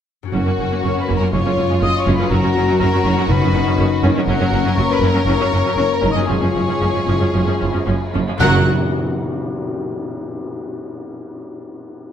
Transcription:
0.23 harp F#2 C#4
0.27 harp F#4 A#4
0.33 double bass section F#1, cello section F#2, viola section A#3 C#4, french horn section C#4 A#4, violin section F#4, flute F#5
0.46 cello section F#2, viola section A#3 C#4
0.59 double bass section F#1, cello section F#2, viola section A#3 C#4
0.72 cello section F#2, viola section A#3 C#4
0.83 double bass section F#1, cello section F#2, viola section A#3 C#4, french horn section C#4 A#4, violin section C#5, flute C#6
0.96 cello section F#2, viola section A#3 C#4
1.00 violin section B4, flute B5
1.08 double bass section F#1, cello section F#2, viola section A#3 C#4
1.15 harp F#2 C#4, violin section A#4, flute A#5
1.20 cello section F#2, viola section A#3 C#4, harp F4
1.28 harp C#5
1.33 double bass section F#1, timpani F#2, cello section F#2, viola section G#3 C#4, french horn section C#4 F4, violin section F4 C#5, flute C#6
1.45 cello section F#2, viola section G#3 C#4
1.58 double bass section F#1, cello section F#2, viola section G#3 C#4
1.70 cello section F#2, viola section G#3 C#4
1.81 double bass section F#1, cello section F#2, viola section G#3 C#4, violin section D#5, flute D#6
1.98 violin section C#5, flute C#6
2.07 double bass section F#1, cello section F#2, viola section G#3 C#4
2.13 harp F#2, violin section B4, flute B5
2.18 cello section F#2, viola section G#3 C#4, harp C#4
2.22 harp F#4
2.27 double bass section F#1, timpani F#2, harp C#5, flute A#5
2.31 cello section F#2, viola section F#3 C#4, french horn section C#4 F#4, violin section F#4 A#4
2.44 cello section F#2, viola section F#3 C#4
2.56 double bass section F#1, cello section F#2, viola section F#3 C#4
2.68 cello section F#2, viola section F#3 C#4
2.78 double bass section F#1, viola section F#3 C#4, french horn section C#4 F#4, violin section A#4, flute A#5
2.83 cello section F#2
2.94 cello section F#2, viola section F#3 C#4
3.05 double bass section F#1, cello section F#2, viola section F#3 C#4
3.11 harp F#2
3.16 cello section F#2, viola section F#3 C#4, harp C#4
3.20 harp F#4
3.25 harp D#5
3.29 double bass section F#1, timpani F#2, cello section F#2, viola section D#3 C#4, french horn section C#4 D#4, violin section B4, flute B5
3.42 cello section F#2, viola section D#3 C#4
3.53 double bass section F#1, cello section F#2, viola section D#3 C#4
3.67 cello section F#2, viola section D#3 C#4
3.78 double bass section F#1, cello section F#2, viola section D#3 C#4
4.03 double bass section F#1, cello section F#2, viola section D#3 C#4
4.10 harp F#2
4.14 cello section F#2, viola section D#3 C#4, harp C#4
4.19 harp F#4
4.24 double bass section F#1, timpani F#2, french horn section A#3 C#4, violin section F#4 A#4, harp A#4, flute F#5
4.28 cello section F#2, viola section F#3 C#4
4.41 cello section F#2, viola section F#3 C#4
4.52 double bass section F#1, cello section F#2, viola section F#3 C#4
4.64 cello section F#2, viola section F#3 C#4
4.74 double bass section F#1, cello section F#2, french horn section A#3 C#4, violin section C#5, flute C#6
4.78 viola section F#3 C#4
4.89 cello section F#2, viola section F#3 C#4, violin section B4, flute B5
5.01 double bass section F#1, cello section F#2, viola section F#3 C#4
5.09 violin section A#4, flute A#5
5.14 cello section F#2, viola section F#3 C#4
5.25 double bass section F#1, cello section F#2, viola section F#3 C#4, french horn section A#3 C#4, violin section C#5, flute C#6
5.39 cello section F#2, viola section F#3 C#4
5.51 double bass section F#1, cello section F#2, viola section F#3 C#4
5.64 cello section F#2, viola section F#3 C#4
5.76 double bass section F#1, cello section F#2, viola section F#3 C#4, french horn section A#3 C#4, violin section C#5, flute C#6
5.94 violin section A#4, flute A#5
6.03 double bass section F#1, cello section F#2, viola section F#3 C#4, french horn section D#4
6.10 harp F#2, violin section D#5, flute D#6
6.14 cello section F#2, viola section F#3 C#4, harp C#4
6.19 harp F4
6.23 harp G#4
6.28 double bass section F#1, cello section F#2, timpani F#2, viola section F3 C#4, french horn section G#3 F4, violin section G#4 C#5, flute C#6
6.41 cello section F#2, viola section F3 C#4
6.55 double bass section F#1, cello section F#2, viola section F3 C#4
6.68 cello section F#2, viola section F3 C#4
6.81 double bass section F#1, cello section F#2, viola section F3 C#4
6.95 cello section F#2, viola section F3 C#4
7.07 double bass section F#1, cello section F#2, viola section F3 C#4
7.21 cello section F#2, viola section F3 C#4
7.34 double bass section F#1, cello section F#2, viola section F3 C#4
7.47 cello section F#2, viola section F3 C#4
7.61 double bass section F#1, cello section F#2, viola section F3 C#4
7.74 cello section F#2, viola section F3 C#4
7.86 double bass section F#1, cello section F#2, viola section F3 C#4
8.14 double bass section F#1, cello section F#2, viola section F3 C#4
8.28 cello section F#2, viola section F3 C#4
8.38 double bass section F#1, harp F#2 F#3 F#4 A#4, timpani F#2, cello section F#2, french horn section A#3 F#4, violin section A#4 F#5, flute F#6, tam-tam
8.42 viola section F#3 F#4, harp C#4 F#5

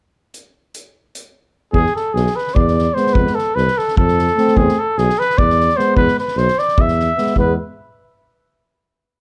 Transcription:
0.34 closed hi-hat
0.74 closed hi-hat
1.15 closed hi-hat
1.73 tuba E2, cornet G#4, kick
1.86 snare
1.96 cornet A4, snare
2.14 tuba B1, cornet G#4, snare
2.27 snare
2.36 cornet B4, snare
2.47 snare
2.54 tuba E2, cornet D5, kick
2.68 snare
2.78 snare
2.94 euphonium G#3, trombone B3, cornet C5, snare
3.06 snare
3.13 tuba F2, cornet B4, kick
3.27 snare
3.35 cornet A4, snare
3.55 tuba C2, cornet B4, snare
3.68 snare
3.78 cornet A4, snare
3.88 snare
3.97 tuba F2, cornet A4, kick
4.08 snare
4.19 snare
4.27 snare
4.37 euphonium A3, trombone C4, snare
4.48 snare
4.56 tuba E2, cornet G#4, kick
4.68 snare
4.79 cornet A4
4.98 tuba B1, cornet G#4, snare
5.09 snare
5.19 cornet B4, snare
5.30 snare
5.38 tuba E2, cornet D5, kick
5.50 snare
5.60 snare
5.69 snare
5.76 euphonium G#3, trombone B3, cornet C5, snare
5.96 tuba E2, cornet B4, kick
6.08 snare
6.18 cornet B4, snare
6.28 snare
6.36 tuba B1, cornet C5, snare
6.48 snare
6.58 cornet D5, snare
6.68 snare
6.77 tuba E2, cornet E5, kick
6.88 snare
6.99 snare
7.17 euphonium G#3, trombone B3, snare
7.27 snare
7.36 tuba E2, euphonium G#3, trombone B3, cornet B4, kick

